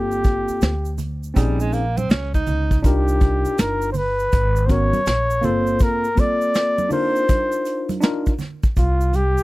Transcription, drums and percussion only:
0.11 shaker soft
0.24 kick medium
0.24 closed hi-hat medium
0.24 shaker soft
0.48 shaker soft
0.61 snare loud
0.61 closed hi-hat loud
0.61 shaker medium
0.85 shaker soft
0.98 closed hi-hat medium
0.98 low conga medium
0.98 shaker soft
1.23 shaker soft
1.36 kick medium
1.36 closed hi-hat medium
1.36 shaker medium
1.60 shaker medium
1.73 closed hi-hat medium
1.73 shaker soft
1.98 high conga medium
1.98 shaker soft
2.10 snare loud
2.10 closed hi-hat medium
2.10 shaker medium
2.34 kick medium
2.34 shaker soft
2.47 closed hi-hat medium
2.47 low conga medium
2.47 shaker soft
2.71 kick medium
2.71 shaker soft
2.84 kick loud
2.84 closed hi-hat medium
2.84 shaker medium
3.08 shaker soft
3.21 kick loud
3.21 closed hi-hat medium
3.21 shaker soft
3.45 shaker medium
3.58 snare loud
3.58 closed hi-hat loud
3.58 shaker medium
3.82 shaker soft
3.94 open hi-hat medium
3.94 low conga medium
3.94 shaker soft
4.19 shaker soft
4.32 kick medium
4.32 closed hi-hat medium
4.32 shaker medium
4.56 shaker soft
4.69 kick medium
4.69 closed hi-hat medium
4.69 shaker soft
4.93 closed hi-hat medium
4.93 high conga medium
4.93 shaker soft
5.06 snare loud
5.06 closed hi-hat medium
5.06 shaker medium
5.30 shaker soft
5.43 closed hi-hat medium
5.43 low conga medium
5.43 shaker soft
5.67 shaker soft
5.79 kick loud
5.79 closed hi-hat medium
5.79 shaker medium
6.04 shaker soft
6.17 kick loud
6.17 closed hi-hat medium
6.17 high conga soft
6.17 shaker soft
6.41 shaker soft
6.54 snare loud
6.54 closed hi-hat loud
6.54 shaker medium
6.78 high conga medium
6.78 shaker soft
6.91 open hi-hat medium
6.91 low conga medium
6.91 shaker soft
7.16 shaker soft
7.29 kick medium
7.29 closed hi-hat medium
7.29 high conga soft
7.29 shaker medium
7.52 shaker soft
7.65 closed hi-hat medium
7.65 shaker soft
7.89 closed hi-hat medium
7.89 high conga medium
7.89 shaker soft
8.02 snare loud
8.02 closed hi-hat medium
8.02 shaker medium
8.26 kick medium
8.26 shaker soft
8.39 snare soft
8.39 closed hi-hat medium
8.39 low conga medium
8.39 shaker soft
8.63 kick medium
8.63 shaker soft
8.76 kick loud
8.76 closed hi-hat medium
8.76 shaker medium
9.01 shaker soft
9.13 closed hi-hat medium
9.13 high conga soft
9.13 shaker soft
9.38 shaker medium

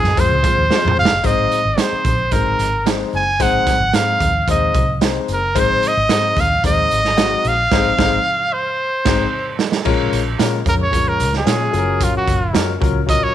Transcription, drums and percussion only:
0.04 snare soft
0.17 kick medium
0.17 closed hi-hat medium
0.44 kick loud
0.44 closed hi-hat medium
0.71 snare medium
0.88 mid tom medium
1.05 snare loud
1.24 kick medium
1.24 closed hi-hat medium
1.52 closed hi-hat medium
1.78 snare loud
1.78 closed hi-hat medium
2.05 kick loud
2.05 closed hi-hat medium
2.31 kick medium
2.31 closed hi-hat medium
2.59 closed hi-hat medium
2.86 snare loud
2.86 closed hi-hat medium
3.13 open hi-hat soft
3.40 kick medium
3.40 closed hi-hat medium
3.67 kick medium
3.67 snare soft
3.67 closed hi-hat medium
3.94 snare loud
3.94 closed hi-hat loud
4.21 kick medium
4.21 closed hi-hat medium
4.48 kick medium
4.48 closed hi-hat medium
4.74 kick medium
4.74 closed hi-hat medium
5.01 snare loud
5.01 closed hi-hat medium
5.28 closed hi-hat medium
5.56 kick medium
5.56 closed hi-hat medium
5.82 closed hi-hat medium
6.09 snare loud
6.09 closed hi-hat loud
6.37 kick medium
6.37 closed hi-hat medium
6.64 kick medium
6.64 closed hi-hat medium
6.91 closed hi-hat medium
7.05 snare soft
7.18 snare loud
7.18 closed hi-hat medium
7.45 closed hi-hat medium
7.71 kick loud
7.71 snare medium
7.71 crash medium
7.99 kick loud
7.99 snare loud
9.05 kick loud
9.05 snare loud
9.05 crash medium
9.59 snare medium
9.72 snare medium
9.85 kick medium
9.85 crash medium
10.13 closed hi-hat medium
10.39 snare medium
10.39 closed hi-hat loud
10.66 kick medium
10.66 closed hi-hat medium
10.93 kick medium
10.93 closed hi-hat medium
11.20 closed hi-hat medium
11.33 snare soft
11.47 snare loud
11.47 closed hi-hat medium
11.74 closed hi-hat medium
12.01 kick medium
12.01 closed hi-hat medium
12.28 kick medium
12.28 closed hi-hat medium
12.55 snare loud
12.55 closed hi-hat loud
12.82 kick loud
12.82 closed hi-hat medium
13.09 kick medium
13.09 closed hi-hat medium

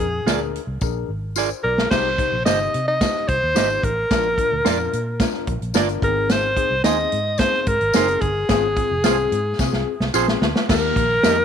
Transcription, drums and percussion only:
0.27 snare loud
0.27 closed hi-hat medium
0.27 tambourine loud
0.55 closed hi-hat medium
0.81 kick medium
0.81 tambourine medium
1.36 tambourine loud
1.78 snare medium
1.91 kick medium
1.91 snare loud
1.91 crash medium
1.91 tambourine medium
2.18 kick medium
2.18 closed hi-hat medium
2.46 snare loud
2.46 closed hi-hat medium
2.46 tambourine medium
2.74 closed hi-hat medium
3.01 kick medium
3.01 snare loud
3.01 closed hi-hat medium
3.01 tambourine medium
3.15 snare soft
3.28 kick medium
3.28 closed hi-hat medium
3.56 snare loud
3.56 closed hi-hat medium
3.56 tambourine loud
3.83 kick medium
3.83 closed hi-hat medium
4.11 kick loud
4.11 snare loud
4.11 closed hi-hat medium
4.11 tambourine medium
4.38 kick medium
4.38 closed hi-hat medium
4.66 snare loud
4.66 closed hi-hat medium
4.66 tambourine medium
4.93 closed hi-hat medium
5.20 kick medium
5.20 snare loud
5.20 closed hi-hat medium
5.20 tambourine medium
5.34 snare soft
5.47 kick medium
5.47 closed hi-hat medium
5.62 closed hi-hat soft
5.74 snare loud
5.74 closed hi-hat loud
5.74 tambourine loud
5.89 closed hi-hat soft
6.02 kick loud
6.02 closed hi-hat medium
6.30 snare loud
6.30 closed hi-hat loud
6.30 tambourine medium
6.57 kick medium
6.57 closed hi-hat medium
6.84 snare loud
6.84 closed hi-hat medium
6.84 tambourine loud
7.12 closed hi-hat medium
7.38 kick loud
7.38 snare loud
7.38 closed hi-hat medium
7.38 tambourine medium
7.53 snare soft
7.66 kick medium
7.66 closed hi-hat medium
7.81 closed hi-hat soft
7.93 snare loud
7.93 closed hi-hat loud
7.93 tambourine loud
8.08 closed hi-hat medium
8.21 kick medium
8.21 closed hi-hat medium
8.49 kick medium
8.49 snare loud
8.49 closed hi-hat medium
8.49 tambourine medium
8.77 kick medium
8.77 closed hi-hat medium
9.04 snare medium
9.04 closed hi-hat medium
9.04 tambourine loud
9.32 closed hi-hat medium
9.59 kick medium
9.59 snare medium
9.59 tambourine medium
9.73 snare medium
10.01 snare medium
10.14 tambourine loud
10.28 snare medium
10.42 snare loud
10.56 snare medium
10.69 kick loud
10.69 snare loud
10.69 crash loud
10.69 tambourine medium
10.96 kick medium
10.96 closed hi-hat medium
11.23 snare loud
11.23 closed hi-hat medium
11.23 tambourine medium

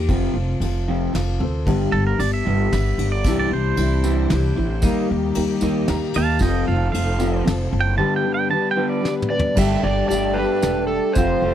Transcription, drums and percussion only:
0.09 kick loud
0.09 ride medium
0.61 ride medium
1.15 snare medium
1.15 ride medium
1.67 kick loud
1.67 ride medium
2.20 ride medium
2.72 snare medium
2.72 ride medium
2.99 ride medium
3.24 kick loud
3.24 ride medium
3.24 tambourine medium
3.77 ride medium
4.04 tambourine medium
4.30 snare medium
4.30 ride medium
4.82 kick loud
4.82 ride medium
4.82 tambourine medium
5.35 ride medium
5.61 tambourine medium
5.88 snare medium
5.88 ride medium
6.14 ride medium
6.39 kick loud
6.39 ride medium
6.39 tambourine medium
6.94 ride medium
7.20 tambourine medium
7.47 snare medium
7.47 ride medium
9.05 snare medium
9.22 mid tom medium
9.39 floor tom loud
9.57 kick loud
9.57 crash loud
9.57 tambourine loud
10.10 closed hi-hat medium
10.10 tambourine medium
10.62 snare medium
10.62 closed hi-hat medium
10.62 tambourine loud
11.15 kick loud
11.15 closed hi-hat medium
11.15 tambourine loud

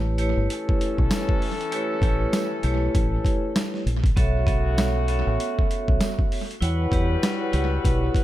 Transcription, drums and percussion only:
0.18 closed hi-hat medium
0.50 closed hi-hat loud
0.69 kick medium
0.81 closed hi-hat medium
0.98 kick medium
1.11 snare loud
1.11 closed hi-hat loud
1.11 tambourine medium
1.29 kick medium
1.42 open hi-hat medium
1.61 closed hi-hat medium
1.72 closed hi-hat loud
2.02 kick loud
2.02 closed hi-hat medium
2.33 snare loud
2.33 closed hi-hat medium
2.33 tambourine medium
2.63 closed hi-hat medium
2.95 kick loud
2.95 closed hi-hat loud
3.25 kick medium
3.25 closed hi-hat medium
3.56 snare loud
3.56 closed hi-hat loud
3.56 tambourine medium
3.74 snare soft
3.87 closed hi-hat medium
4.04 kick loud
4.04 closed hi-hat medium
4.17 kick loud
4.17 closed hi-hat loud
4.47 kick loud
4.47 closed hi-hat medium
4.78 snare loud
4.78 closed hi-hat medium
4.78 tambourine medium
5.08 closed hi-hat medium
5.40 closed hi-hat loud
5.59 kick medium
5.71 closed hi-hat medium
5.88 kick medium
6.01 snare loud
6.01 closed hi-hat loud
6.01 tambourine medium
6.19 kick medium
6.32 open hi-hat medium
6.51 closed hi-hat medium
6.62 closed hi-hat loud
6.92 kick loud
6.92 closed hi-hat medium
7.23 snare loud
7.23 closed hi-hat medium
7.23 tambourine medium
7.53 closed hi-hat medium
7.85 kick loud
7.85 closed hi-hat loud
8.15 kick medium
8.15 closed hi-hat medium

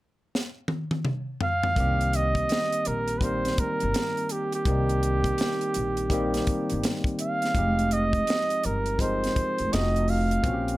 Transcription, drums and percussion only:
0.35 snare medium
0.68 high tom medium
0.91 high tom medium
1.05 mid tom medium
1.41 floor tom medium
1.63 floor tom medium
1.76 kick medium
1.76 closed hi-hat medium
2.01 closed hi-hat soft
2.13 closed hi-hat medium
2.35 kick medium
2.35 closed hi-hat soft
2.49 snare medium
2.49 closed hi-hat medium
2.72 closed hi-hat soft
2.85 closed hi-hat medium
3.08 closed hi-hat soft
3.21 kick medium
3.21 closed hi-hat medium
3.45 snare soft
3.45 closed hi-hat soft
3.58 kick medium
3.58 closed hi-hat medium
3.80 closed hi-hat soft
3.94 snare medium
3.94 closed hi-hat medium
4.17 closed hi-hat soft
4.29 closed hi-hat medium
4.52 closed hi-hat soft
4.65 kick medium
4.65 closed hi-hat medium
4.89 closed hi-hat soft
5.03 closed hi-hat medium
5.24 kick medium
5.24 closed hi-hat soft
5.38 snare medium
5.38 closed hi-hat medium
5.61 closed hi-hat soft
5.74 closed hi-hat medium
5.97 closed hi-hat soft
6.10 kick medium
6.10 closed hi-hat medium
6.34 snare soft
6.34 closed hi-hat soft
6.47 kick medium
6.47 closed hi-hat medium
6.70 closed hi-hat soft
6.84 snare loud
6.84 closed hi-hat medium
7.04 kick medium
7.04 closed hi-hat soft
7.19 closed hi-hat medium
7.42 snare soft
7.42 closed hi-hat soft
7.55 kick medium
7.55 closed hi-hat medium
7.79 closed hi-hat soft
7.91 closed hi-hat medium
8.13 kick medium
8.13 closed hi-hat soft
8.27 snare medium
8.27 closed hi-hat medium
8.50 closed hi-hat soft
8.63 closed hi-hat medium
8.86 closed hi-hat soft
8.99 kick medium
8.99 closed hi-hat medium
9.24 snare soft
9.24 closed hi-hat soft
9.36 kick medium
9.36 closed hi-hat medium
9.58 closed hi-hat soft
9.73 snare loud
9.73 closed hi-hat medium
9.96 closed hi-hat soft
10.08 open hi-hat soft
10.31 closed hi-hat soft
10.44 kick medium
10.44 closed hi-hat medium
10.68 closed hi-hat soft

